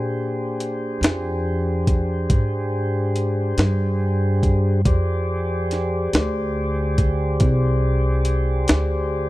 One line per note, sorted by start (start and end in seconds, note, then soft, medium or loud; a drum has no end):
0.00 0.99 A#2 medium
0.00 4.81 D4 medium
0.00 4.81 G4 medium
0.00 4.81 G#4 medium
0.00 4.82 C5 medium
0.60 closed hi-hat medium
1.01 2.25 F2 medium
1.01 snare loud
1.01 closed hi-hat medium
1.87 kick medium
1.87 closed hi-hat medium
2.30 3.54 G#2 medium
2.30 kick loud
2.30 closed hi-hat medium
3.16 closed hi-hat soft
3.58 4.82 G2 medium
3.58 snare loud
3.58 closed hi-hat medium
4.43 kick medium
4.43 closed hi-hat soft
4.85 6.09 F2 medium
4.85 9.29 G4 medium
4.85 9.29 G#4 medium
4.85 9.29 C5 medium
4.85 9.29 D5 medium
4.85 kick loud
4.85 closed hi-hat medium
5.71 snare soft
5.71 closed hi-hat medium
6.13 7.37 D2 medium
6.13 snare loud
6.13 closed hi-hat medium
6.98 kick medium
6.98 closed hi-hat medium
7.40 8.64 C2 medium
7.40 kick loud
7.40 closed hi-hat medium
8.25 closed hi-hat medium
8.68 9.29 D2 medium
8.68 snare loud
8.68 closed hi-hat medium